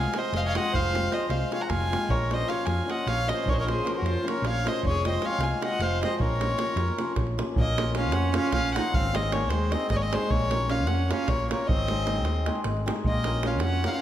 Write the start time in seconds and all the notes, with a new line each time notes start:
Already playing: F3 G#3 F5 G#5
0.03 davul high
0.14 F3 G#3 C4 F4 C5, davul high
0.18 D#5
0.24 davul high
0.32 F1 C5, davul high
0.36 D#5 F5
0.45 C#5 F5
0.55 F3 G#3 C4 F4 D#5, davul high
0.59 F#5
0.65 davul high
0.73 F1 C5 F5, davul low
0.93 F3 G#3 C4 F4, davul high
1.11 F3 G#3 C4 F4 C5 D#5, davul high
1.21 davul high
1.28 C2 C5 F5, davul high
1.42 davul high
1.51 F3 G#3 C4 F4 C#5 F5, davul high
1.60 F#5 A#5
1.68 F1 F5 G#5, davul high, davul low
1.82 davul high
1.91 F3 G#3 C4 F4, davul high
2.02 davul high
2.09 A#1 A#4 C#5, davul low
2.21 davul high
2.30 F3 A#3 C#4 F4 C5 D#5, davul high
2.41 davul high
2.47 F3 A#3 C#4 F4 C#5 F5, davul high
2.66 F2 F5 G#5, davul high
2.78 davul high
2.86 F3 A#3 C#4 F4, davul high
2.90 D#5 F#5
2.99 davul high
3.07 A#1 C#5 F5, davul high
3.27 F3 A#3 C#4 F4 D#5, davul high
3.33 C5
3.39 davul high
3.46 A#1 C#5, davul low
3.50 A#4 C5 D#5
3.58 A#4 C#5, davul high
3.65 F3 A#3 C#4 F4, davul high
3.70 G#4 C5
3.79 davul high
3.84 F3 A#3 C#4 F4 A#4, davul high
3.88 F#4 C5
3.93 G#4 A#4
3.97 F#4
4.02 F2 C5, davul high
4.08 F4
4.17 davul high
4.22 F3 A#3 C#4 F4
4.27 A#4 C#5, davul high
4.38 davul high
4.42 A#1, davul high
4.47 C#5 F5
4.64 F3 A#3 C#4 F4, davul high
4.68 C5 D#5
4.76 davul high
4.83 F1, davul low
4.88 G#4 C#5
4.95 davul high
5.04 F3 G#3 C4 F4 C5, davul high
5.09 D#5
5.14 davul high
5.22 F3 G#3 C4 F4 C#5 F5, davul high
5.38 C2 F5, davul high
5.43 G#5
5.51 davul high
5.62 F3 G#3 C4 F4 D#5 F#5, davul high
5.72 davul high
5.79 F1 C5 F5, davul high
6.02 F3 G#3 C4 F4 C5 D#5, davul high
6.12 davul high
6.20 A#1 A#4 C#5, davul low
6.40 F3 A#3 C#4 F4, davul high
6.50 davul high
6.57 F3 A#3 C#4 F4, davul high
6.76 F2, davul high
6.88 davul high
6.98 F3 A#3 C#4 F4, davul high
7.16 A#1, davul high, davul low
7.27 davul high
7.38 F3 A#3 C#4 F4, davul high
7.56 A#1 A#3 D#5, davul low
7.77 F3 A#3 C#4 F4, davul high
7.95 F3 A#3 C#4 F4 F5, davul high
8.12 F2 C#4 F#5, davul high
8.34 F3 A#3 C#4 F4 F5, davul high
8.53 A#1 C#4 F5, davul high, davul low
8.64 davul high
8.75 F3 A#3 C#4 D#4 F4 F#5, davul high
8.94 G#1 C4 F5, davul low
9.12 G#3 C4 D#4 G#4 D#5, davul high
9.32 G#3 A#3 C4 D#4 G#4 C#5, davul high
9.49 D#2 G#3 C5, davul high
9.72 G#3 C4 D#4 G#4 D#5, davul high
9.90 G#1 C4 D#5, davul high, davul low
9.96 A#3 C#5
10.02 C4 D#5, davul high
10.12 G#3 C4 D#4 G#4 C5, davul high
10.30 A#1 A#3 C#5, davul low
10.51 A#3 C#4 F4 A#4, davul high
10.69 A#3 C#4 F4 A#4 F5, davul high
10.86 F2 C#4 F#5, davul high
11.09 A#3 C#4 F4 A#4 F5, davul high
11.28 A#1 A#3 C#5, davul high, davul low
11.39 davul high
11.49 A#3 C#4 F4 A#4 C#5, davul high
11.67 G#1 C4 D#5, davul low
11.79 davul high
11.88 G#3 C4 D#4 G#4, davul high
11.97 davul high
12.05 G#3 C4 D#4 G#4, davul high
12.16 davul high
12.24 D#2, davul high
12.36 davul high
12.46 G#3 C4 D#4 G#4, davul high
12.55 davul high
12.64 G#1, davul high
12.77 davul high
12.86 G#3 C4 D#4 G#4, davul high
12.96 davul high
13.05 A#1 A#3 D#5, davul low
13.24 A#3 C#4 F4 A#4, davul high
13.43 A#3 C#4 F4 A#4, davul high
13.47 F5
13.60 F2 C#4 F#5, davul high
13.83 A#3 C#4 F4 A#4 F5, davul high
13.87 D#4 F#5
13.93 C#4 F5